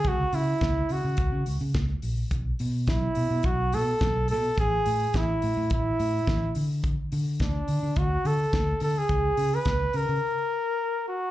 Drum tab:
HH |xoxoxoxo|xoxoxoxo|xoxoxoxo|xoxoxoxo|
SD |--o---o-|--o---o-|--o---o-|--o---o-|
BD |o-o-o-o-|o-o-o-o-|o-o-o-o-|o-o-o-o-|

HH |xoxo----|
SD |--o-----|
BD |o-o-----|